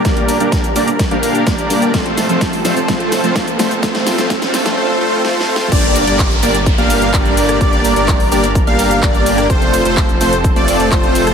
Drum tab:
CC |------------------------------------------------|------------------------------------------------|------------------------------------------------|x-----------------------------------------------|
HH |x--x--o--x--x--x--o--x--x--x--o--x--x--x--o--x--|x--x--o--x--x--o--o--x--x--x--o--x--x--x--o--x--|x--x--o--x--x--x--o--x--------------------------|x--x--o--x--x--x--o--x--x--x--o--x--x--x--o--x--|
SH |x-----x--x--x--x--x--x--x-----x--x--x--x--x--x--|x-----x--x--x--x--x--x--x-----x--x--x--x--x--x--|x-----x--x--x--x--x--x--------------------------|x--x--x--x--x--x--x--x--x--x--x--x--x--x--x--x--|
CP |------------------------------------------------|------------------------------------------------|------------------------------------------------|------------x-----------------------x-----------|
SD |o-----------o-----------o-----------o-----------|o-----o-----o-----o-----o-----o-----o-----o-----|o--o--o--o--o--o--o--o--------------o---o---o---|---------------------------------------------r--|
BD |o-----------o-----------o-----------o-----------|o-----------o-----------o-----------o-----------|o-----------o-----------------------------------|o-----------o-----------o-----------o-----------|

CC |------------------------------------------------|------------------------------------------------|
HH |x--x--o--x--x--o--o--x--x--x--o--x--x--x--o--x--|x--x--o--x--x--x--o--x--x--x--o--x--x--x--o--x--|
SH |x--x--x--x--x--x--x--x--x--x--x--x--x--x--x--x--|x--x--x--x--x--x--x--x--x--x--x--x--x--x--x--x--|
CP |------------x-----------------------x-----------|------------x-----------------------x-----------|
SD |---------------------------------------------r--|---------------------------------------------r--|
BD |o-----------o-----------o-----------o-----------|o-----------o-----------o-----------o-----------|